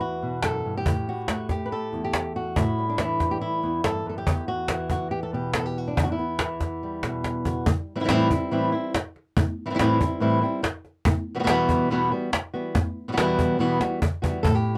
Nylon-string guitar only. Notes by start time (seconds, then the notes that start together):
Already playing: E2 E3 B3
0.01 F#4
0.23 B2
0.44 F#2 A4
0.65 G2
0.77 G4
0.87 A2
1.09 F#4
1.29 A3 F#4
1.51 G4
1.66 B4
1.72 A4
1.93 E2
2.05 G4
2.36 F#4
2.57 A2 E4
2.79 G3
2.89 D4
2.99 E3 E4
3.31 G4
3.41 E4
3.63 E2
3.84 G2 A4
4.06 F#2 A4
4.18 G4
4.27 E2
4.48 F#4
4.69 E3
4.91 F#4
5.11 G4
5.23 A4
5.33 B2 G4
5.55 A4
5.66 G4
5.78 F#4
5.88 D4
5.97 E2 E4
6.04 F#4
6.12 E4
6.19 B3
6.40 E3
6.83 G3
7.04 B2
7.47 F#4
7.67 muted nylon-string guitar stroke
7.96 E3 G3 C4 E4
8.00 E3 G3 C4 E4
8.04 E3 G3 C4 E4
8.09 A2 E3 G3 C4 E4
8.30 G3 C4 E4
8.51 A2 E3 G3 C4 E4
8.72 G3 C4 E4
8.95 muted nylon-string guitar stroke
9.37 muted nylon-string guitar stroke
9.66 E3 G3 C4 E4
9.70 E3 G3 C4 E4
9.74 E3 G3 C4 E4
9.79 A2 E3 G3 C4 E4
10.00 G3 C4 E4
10.20 A2 E3 G3 C4 E4
10.41 G3 C4 E4
10.63 muted nylon-string guitar stroke
11.06 muted nylon-string guitar stroke
11.35 B2 E3 G3 B3 F#4
11.39 B2 E3 G3 B3 F#4
11.44 E3 G3 B3 F#4
11.48 E2 B2 E3 G3 B3 F#4
11.90 E2 B2 E3 G3 B3 F#4
12.12 E3 G3 B3 F#4
12.33 muted nylon-string guitar stroke
12.54 E3 G3 B3 F#4
12.75 muted nylon-string guitar stroke
13.08 B2 E3 G3 B3 F#4
13.12 B2 E3 G3 B3 F#4
13.17 E2 B2 E3 G3 B3 F#4
13.59 E2 B2 E3 G3 B3 F#4
13.81 E3 G3 B3 F#4
14.02 muted nylon-string guitar stroke
14.22 E3 G3 B3 F#4
14.43 A2 A4
14.55 G4